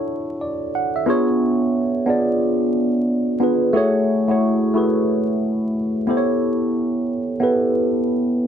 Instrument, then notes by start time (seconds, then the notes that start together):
tine electric piano
Already playing: D4 E4 F#4 A4 C#5
0.41 D5
0.75 F#5
0.96 E5
1.06 B3 D4 F4 G#4 C#5
2.06 B3 D4 F4 G#4 D5
3.40 B3 D4 F4 G#4 B4
3.73 A3 E4 F#4 G#4
3.77 C#5
4.28 A3 E4 F#4 G#4 C#5
4.74 A3 E4 F#4 G#4 B4
6.07 B3 E4 G4 A4 C5
6.17 C#5
7.40 B3 E4 G4 A4 B4